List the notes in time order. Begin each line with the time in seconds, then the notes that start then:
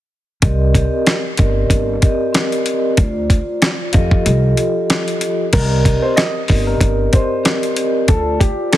0.42 C2 C4 G4 A#4 D5 D#5, kick, closed hi-hat
0.74 C4 G4 A#4 D5 D#5, kick, closed hi-hat
1.07 cross-stick, snare, closed hi-hat
1.37 G1 C4 G4 A#4 D5 D#5, kick, closed hi-hat
1.70 G1, kick, closed hi-hat
2.02 C4 G4 A#4 D5 D#5, kick, closed hi-hat
2.33 C4 G4 A#4, cross-stick, snare, closed hi-hat
2.52 closed hi-hat
2.66 C4 G4 A#4 D5 D#5, closed hi-hat
2.97 D2 F4 C5 D5, kick, closed hi-hat
3.30 kick, closed hi-hat
3.62 cross-stick, snare, closed hi-hat
3.93 F2 F3 F4 G4 A4 D#5, kick, closed hi-hat
4.11 kick
4.25 C2 F3 F4 G4 A4 D#5, closed hi-hat
4.57 closed hi-hat
4.90 cross-stick, snare, closed hi-hat
5.08 closed hi-hat
5.21 closed hi-hat
5.53 C2 C4 G4 A#4 D5 D#5, kick, closed hi-hat, crash
5.85 C4 G4 A#4 D5 D#5, kick, closed hi-hat
6.02 C5
6.16 D#5, cross-stick, snare, closed hi-hat
6.48 G1 C4 G4 A#4 D5 D#5, kick, open hi-hat
6.67 A#4
6.81 G1, kick, closed hi-hat
7.12 C4 G4 A#4 C5 D5 D#5, kick, closed hi-hat
7.43 C4 G4 A#4 D5 D#5, cross-stick, snare, closed hi-hat
7.63 closed hi-hat
7.76 C4 G4 A#4 D5 D#5, closed hi-hat
8.08 D2 F4 A4 C5 D5, kick, closed hi-hat
8.40 G4, kick, closed hi-hat
8.72 A4, cross-stick, snare, closed hi-hat